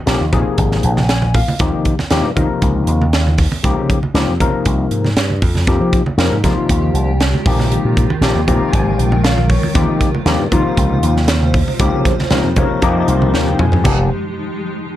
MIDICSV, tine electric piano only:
0, 0, Header, 1, 2, 480
1, 0, Start_track
1, 0, Key_signature, -4, "minor"
1, 0, Tempo, 510204
1, 1508, Time_signature, 4, 2, 24, 8
1, 14077, End_track
2, 0, Start_track
2, 0, Title_t, "Tine electric piano"
2, 0, Program_c, 0, 4
2, 56, Note_on_c, 0, 48, 83
2, 62, Note_on_c, 0, 58, 74
2, 65, Note_on_c, 0, 53, 80
2, 67, Note_on_c, 0, 63, 77
2, 73, Note_on_c, 0, 67, 93
2, 223, Note_off_c, 0, 48, 0
2, 226, Note_off_c, 0, 58, 0
2, 228, Note_off_c, 0, 53, 0
2, 229, Note_off_c, 0, 63, 0
2, 232, Note_off_c, 0, 67, 0
2, 303, Note_on_c, 0, 48, 77
2, 304, Note_on_c, 0, 53, 71
2, 305, Note_on_c, 0, 58, 72
2, 308, Note_on_c, 0, 63, 73
2, 313, Note_on_c, 0, 68, 87
2, 938, Note_off_c, 0, 48, 0
2, 938, Note_off_c, 0, 53, 0
2, 939, Note_off_c, 0, 58, 0
2, 940, Note_off_c, 0, 63, 0
2, 943, Note_off_c, 0, 68, 0
2, 1028, Note_on_c, 0, 80, 70
2, 1251, Note_off_c, 0, 80, 0
2, 1270, Note_on_c, 0, 77, 69
2, 1492, Note_off_c, 0, 77, 0
2, 1501, Note_on_c, 0, 48, 78
2, 1503, Note_on_c, 0, 53, 70
2, 1504, Note_on_c, 0, 58, 74
2, 1509, Note_on_c, 0, 63, 74
2, 1511, Note_on_c, 0, 67, 82
2, 1822, Note_off_c, 0, 48, 0
2, 1823, Note_off_c, 0, 53, 0
2, 1823, Note_off_c, 0, 58, 0
2, 1826, Note_off_c, 0, 63, 0
2, 1827, Note_off_c, 0, 67, 0
2, 1980, Note_on_c, 0, 48, 84
2, 1983, Note_on_c, 0, 53, 73
2, 1985, Note_on_c, 0, 58, 80
2, 1991, Note_on_c, 0, 63, 76
2, 1993, Note_on_c, 0, 67, 97
2, 2145, Note_off_c, 0, 48, 0
2, 2146, Note_off_c, 0, 53, 0
2, 2148, Note_off_c, 0, 58, 0
2, 2151, Note_off_c, 0, 63, 0
2, 2152, Note_off_c, 0, 67, 0
2, 2217, Note_on_c, 0, 48, 81
2, 2219, Note_on_c, 0, 53, 73
2, 2220, Note_on_c, 0, 58, 71
2, 2225, Note_on_c, 0, 63, 76
2, 2226, Note_on_c, 0, 70, 88
2, 2854, Note_off_c, 0, 48, 0
2, 2855, Note_off_c, 0, 53, 0
2, 2855, Note_off_c, 0, 58, 0
2, 2858, Note_off_c, 0, 63, 0
2, 2858, Note_off_c, 0, 70, 0
2, 3417, Note_on_c, 0, 48, 73
2, 3422, Note_on_c, 0, 53, 72
2, 3426, Note_on_c, 0, 63, 78
2, 3427, Note_on_c, 0, 58, 72
2, 3428, Note_on_c, 0, 67, 89
2, 3739, Note_off_c, 0, 48, 0
2, 3741, Note_off_c, 0, 53, 0
2, 3743, Note_off_c, 0, 63, 0
2, 3744, Note_off_c, 0, 58, 0
2, 3744, Note_off_c, 0, 67, 0
2, 3896, Note_on_c, 0, 48, 83
2, 3899, Note_on_c, 0, 58, 73
2, 3901, Note_on_c, 0, 53, 79
2, 3905, Note_on_c, 0, 63, 74
2, 3908, Note_on_c, 0, 67, 89
2, 4062, Note_off_c, 0, 48, 0
2, 4063, Note_off_c, 0, 58, 0
2, 4064, Note_off_c, 0, 53, 0
2, 4066, Note_off_c, 0, 63, 0
2, 4068, Note_off_c, 0, 67, 0
2, 4140, Note_on_c, 0, 48, 73
2, 4143, Note_on_c, 0, 53, 76
2, 4145, Note_on_c, 0, 58, 70
2, 4148, Note_on_c, 0, 63, 75
2, 4153, Note_on_c, 0, 70, 91
2, 4773, Note_off_c, 0, 48, 0
2, 4775, Note_off_c, 0, 53, 0
2, 4776, Note_off_c, 0, 58, 0
2, 4778, Note_off_c, 0, 63, 0
2, 4780, Note_off_c, 0, 70, 0
2, 5330, Note_on_c, 0, 48, 81
2, 5332, Note_on_c, 0, 53, 69
2, 5337, Note_on_c, 0, 58, 72
2, 5343, Note_on_c, 0, 63, 74
2, 5346, Note_on_c, 0, 67, 91
2, 5653, Note_off_c, 0, 48, 0
2, 5655, Note_off_c, 0, 53, 0
2, 5657, Note_off_c, 0, 58, 0
2, 5660, Note_off_c, 0, 63, 0
2, 5662, Note_off_c, 0, 67, 0
2, 5809, Note_on_c, 0, 48, 79
2, 5812, Note_on_c, 0, 53, 77
2, 5815, Note_on_c, 0, 58, 77
2, 5820, Note_on_c, 0, 63, 73
2, 5822, Note_on_c, 0, 70, 93
2, 5976, Note_off_c, 0, 48, 0
2, 5978, Note_off_c, 0, 53, 0
2, 5980, Note_off_c, 0, 58, 0
2, 5982, Note_off_c, 0, 63, 0
2, 5983, Note_off_c, 0, 70, 0
2, 6051, Note_on_c, 0, 53, 72
2, 6052, Note_on_c, 0, 48, 75
2, 6057, Note_on_c, 0, 58, 72
2, 6062, Note_on_c, 0, 63, 71
2, 6062, Note_on_c, 0, 65, 84
2, 6687, Note_off_c, 0, 53, 0
2, 6688, Note_off_c, 0, 48, 0
2, 6690, Note_off_c, 0, 58, 0
2, 6693, Note_off_c, 0, 63, 0
2, 6693, Note_off_c, 0, 65, 0
2, 7012, Note_on_c, 0, 48, 83
2, 7014, Note_on_c, 0, 53, 78
2, 7017, Note_on_c, 0, 58, 73
2, 7018, Note_on_c, 0, 63, 77
2, 7026, Note_on_c, 0, 67, 94
2, 7597, Note_off_c, 0, 48, 0
2, 7598, Note_off_c, 0, 53, 0
2, 7599, Note_off_c, 0, 58, 0
2, 7600, Note_off_c, 0, 63, 0
2, 7604, Note_off_c, 0, 67, 0
2, 7729, Note_on_c, 0, 48, 90
2, 7731, Note_on_c, 0, 53, 73
2, 7734, Note_on_c, 0, 58, 76
2, 7738, Note_on_c, 0, 63, 71
2, 7742, Note_on_c, 0, 67, 90
2, 7896, Note_off_c, 0, 48, 0
2, 7896, Note_off_c, 0, 53, 0
2, 7898, Note_off_c, 0, 58, 0
2, 7900, Note_off_c, 0, 63, 0
2, 7902, Note_off_c, 0, 67, 0
2, 7968, Note_on_c, 0, 48, 83
2, 7971, Note_on_c, 0, 53, 78
2, 7975, Note_on_c, 0, 82, 65
2, 7977, Note_on_c, 0, 58, 74
2, 7980, Note_on_c, 0, 63, 71
2, 7981, Note_on_c, 0, 67, 83
2, 8200, Note_off_c, 0, 82, 0
2, 8209, Note_on_c, 0, 80, 75
2, 8437, Note_off_c, 0, 80, 0
2, 8448, Note_on_c, 0, 79, 61
2, 8605, Note_off_c, 0, 48, 0
2, 8607, Note_off_c, 0, 53, 0
2, 8610, Note_off_c, 0, 58, 0
2, 8612, Note_off_c, 0, 63, 0
2, 8612, Note_off_c, 0, 67, 0
2, 8676, Note_off_c, 0, 79, 0
2, 8689, Note_on_c, 0, 77, 73
2, 8917, Note_off_c, 0, 77, 0
2, 8933, Note_on_c, 0, 73, 65
2, 9159, Note_off_c, 0, 73, 0
2, 9164, Note_on_c, 0, 48, 83
2, 9168, Note_on_c, 0, 53, 79
2, 9172, Note_on_c, 0, 58, 72
2, 9176, Note_on_c, 0, 63, 82
2, 9178, Note_on_c, 0, 67, 98
2, 9489, Note_off_c, 0, 48, 0
2, 9491, Note_off_c, 0, 53, 0
2, 9493, Note_off_c, 0, 58, 0
2, 9495, Note_off_c, 0, 63, 0
2, 9496, Note_off_c, 0, 67, 0
2, 9649, Note_on_c, 0, 48, 88
2, 9651, Note_on_c, 0, 53, 80
2, 9654, Note_on_c, 0, 58, 79
2, 9658, Note_on_c, 0, 63, 82
2, 9662, Note_on_c, 0, 67, 97
2, 9815, Note_off_c, 0, 48, 0
2, 9816, Note_off_c, 0, 53, 0
2, 9818, Note_off_c, 0, 58, 0
2, 9820, Note_off_c, 0, 63, 0
2, 9822, Note_off_c, 0, 67, 0
2, 9892, Note_on_c, 0, 48, 78
2, 9894, Note_on_c, 0, 53, 68
2, 9896, Note_on_c, 0, 58, 77
2, 9901, Note_on_c, 0, 65, 94
2, 9903, Note_on_c, 0, 63, 76
2, 10528, Note_off_c, 0, 48, 0
2, 10529, Note_off_c, 0, 53, 0
2, 10530, Note_off_c, 0, 58, 0
2, 10533, Note_off_c, 0, 65, 0
2, 10534, Note_off_c, 0, 63, 0
2, 11096, Note_on_c, 0, 48, 76
2, 11102, Note_on_c, 0, 53, 81
2, 11103, Note_on_c, 0, 58, 77
2, 11106, Note_on_c, 0, 63, 76
2, 11110, Note_on_c, 0, 67, 92
2, 11416, Note_off_c, 0, 48, 0
2, 11419, Note_off_c, 0, 53, 0
2, 11420, Note_off_c, 0, 58, 0
2, 11421, Note_off_c, 0, 63, 0
2, 11423, Note_off_c, 0, 67, 0
2, 11579, Note_on_c, 0, 53, 79
2, 11580, Note_on_c, 0, 48, 85
2, 11583, Note_on_c, 0, 58, 79
2, 11584, Note_on_c, 0, 63, 80
2, 11588, Note_on_c, 0, 70, 93
2, 11742, Note_off_c, 0, 48, 0
2, 11742, Note_off_c, 0, 53, 0
2, 11744, Note_off_c, 0, 58, 0
2, 11744, Note_off_c, 0, 63, 0
2, 11746, Note_off_c, 0, 70, 0
2, 11822, Note_on_c, 0, 48, 79
2, 11825, Note_on_c, 0, 53, 74
2, 11830, Note_on_c, 0, 58, 77
2, 11831, Note_on_c, 0, 73, 64
2, 11836, Note_on_c, 0, 63, 73
2, 11839, Note_on_c, 0, 70, 92
2, 12050, Note_off_c, 0, 73, 0
2, 12054, Note_off_c, 0, 48, 0
2, 12055, Note_off_c, 0, 53, 0
2, 12062, Note_off_c, 0, 58, 0
2, 12065, Note_off_c, 0, 63, 0
2, 12065, Note_on_c, 0, 48, 86
2, 12066, Note_on_c, 0, 53, 85
2, 12071, Note_off_c, 0, 70, 0
2, 12073, Note_on_c, 0, 75, 72
2, 12074, Note_on_c, 0, 58, 89
2, 12076, Note_on_c, 0, 63, 82
2, 12081, Note_on_c, 0, 67, 93
2, 12292, Note_off_c, 0, 75, 0
2, 12312, Note_on_c, 0, 77, 61
2, 12532, Note_off_c, 0, 77, 0
2, 12556, Note_on_c, 0, 79, 72
2, 12774, Note_off_c, 0, 79, 0
2, 12791, Note_on_c, 0, 80, 63
2, 12836, Note_off_c, 0, 48, 0
2, 12836, Note_off_c, 0, 53, 0
2, 12840, Note_off_c, 0, 58, 0
2, 12841, Note_off_c, 0, 63, 0
2, 12844, Note_off_c, 0, 67, 0
2, 13012, Note_off_c, 0, 80, 0
2, 13020, Note_on_c, 0, 67, 81
2, 13021, Note_on_c, 0, 58, 75
2, 13022, Note_on_c, 0, 48, 73
2, 13022, Note_on_c, 0, 53, 68
2, 13022, Note_on_c, 0, 63, 72
2, 13246, Note_off_c, 0, 58, 0
2, 13246, Note_off_c, 0, 67, 0
2, 13247, Note_off_c, 0, 48, 0
2, 13247, Note_off_c, 0, 53, 0
2, 13247, Note_off_c, 0, 63, 0
2, 14077, End_track
0, 0, End_of_file